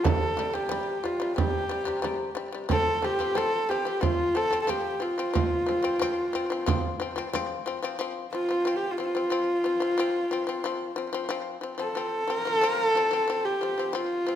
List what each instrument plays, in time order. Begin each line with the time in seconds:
0.03 shamisen C3 G3, horsehead fiddle A4, frame drum
0.37 shamisen C3 G3, frame drum
0.53 shamisen C3 G3, horsehead fiddle G4, frame drum
0.69 shamisen C3 G3, frame drum
1.03 shamisen C3 G3, horsehead fiddle F4, frame drum
1.20 shamisen C3 G3
1.36 shamisen C3 G3, horsehead fiddle G4, frame drum
1.69 shamisen C3 G3
1.85 shamisen C3 G3, frame drum
2.02 shamisen C3 G3, frame drum
2.35 shamisen C3 G3
2.52 shamisen C3 G3
2.69 shamisen F3 C4, horsehead fiddle A4, frame drum
3.02 shamisen F3 C4, horsehead fiddle G4, frame drum
3.19 shamisen F3 C4, frame drum
3.35 shamisen F3 C4, horsehead fiddle A4, frame drum
3.69 shamisen F3 C4, horsehead fiddle G4, frame drum
3.85 shamisen F3 C4
4.01 shamisen F3 C4, horsehead fiddle F4, frame drum
4.35 shamisen F3 C4, horsehead fiddle A4
4.51 shamisen F3 C4, frame drum
4.62 horsehead fiddle A4
4.67 shamisen F3 C4, horsehead fiddle G4, frame drum
5.00 shamisen F3 C4, horsehead fiddle F4
5.18 shamisen F3 C4
5.34 shamisen F3 C4, frame drum
5.66 shamisen F3 C4, frame drum
5.83 shamisen F3 C4, frame drum
5.99 shamisen F3 C4, frame drum
6.33 shamisen F3 C4, frame drum
6.50 shamisen F3 C4
6.66 shamisen F3 C4, frame drum
7.00 shamisen F3 C4
7.16 shamisen F3 C4, frame drum
7.33 shamisen F3 C4, frame drum
7.66 shamisen F3 C4
7.83 shamisen F3 C4
7.99 shamisen F3 C4
8.32 shamisen F3 C4, horsehead fiddle F4
8.49 shamisen F3 C4
8.65 shamisen F3 C4
8.76 horsehead fiddle G4
8.91 horsehead fiddle F4
8.98 shamisen F3 C4, horsehead fiddle F4
9.15 shamisen F3 C4
9.30 shamisen F3 C4
9.64 shamisen F3 C4
9.80 shamisen F3 C4
9.98 shamisen F3 C4
10.31 shamisen F3 C4
10.47 shamisen F3 C4
10.64 shamisen F3 C4
10.96 shamisen F3 C4
11.13 shamisen F3 C4
11.29 shamisen F3 C4
11.61 shamisen F3 C4
11.78 shamisen F3 C4, horsehead fiddle A4
11.95 shamisen F3 C4
12.28 shamisen F3 C4
12.37 horsehead fiddle A#4
12.45 shamisen F3 C4
12.53 horsehead fiddle A4
12.61 shamisen F3 C4
12.69 horsehead fiddle A#4
12.85 horsehead fiddle A4
12.95 shamisen F3 C4
13.11 shamisen F3 C4
13.28 shamisen F3 C4
13.45 horsehead fiddle G4
13.61 shamisen F3 C4
13.78 shamisen F3 C4
13.93 shamisen F3 C4, horsehead fiddle F4
14.27 shamisen F3 C4